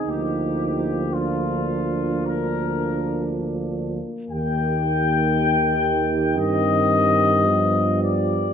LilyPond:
<<
  \new Staff \with { instrumentName = "Trumpet section" } { \time 4/4 \key bes \mixolydian \tempo 4 = 58 g'4 f'4 bes'4 r4 | g''2 ees''4. d''8 | }
  \new Staff \with { instrumentName = "French horn section" } { \time 4/4 \key bes \mixolydian ees'4 d'2. | g'1 | }
  \new Staff \with { instrumentName = "Euphonium" } { \time 4/4 \key bes \mixolydian bes1~ | bes4.~ bes16 r16 c'4 b4 | }
  \new Staff \with { instrumentName = "Euphonium" } { \clef bass \time 4/4 \key bes \mixolydian f2.~ f8. r16 | ees2. f4 | }
  \new Staff \with { instrumentName = "Tuba" } { \clef bass \time 4/4 \key bes \mixolydian d,2.~ d,8. r16 | ees,2 g,2 | }
>>